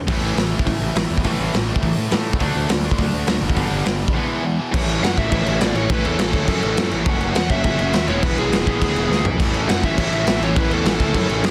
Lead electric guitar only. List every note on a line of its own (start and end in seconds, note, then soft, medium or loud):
5.04 5.18 F#5 loud
5.18 5.29 E5 loud
5.30 5.58 E5 loud
5.61 5.76 D5 loud
5.76 5.91 C#5 loud
5.91 6.05 B4 loud
6.06 6.88 A4 medium
7.37 7.50 F#5 loud
7.51 7.63 E5 loud
7.64 8.09 E5 loud
8.08 8.23 C#5 loud
8.23 8.38 B4 medium
8.38 9.25 G#4 medium
9.69 9.82 F#5 loud
9.85 9.98 E5 loud
10.00 10.44 E5 loud
10.43 10.58 C#5 loud
10.58 10.73 B4 loud
10.73 11.51 A4 medium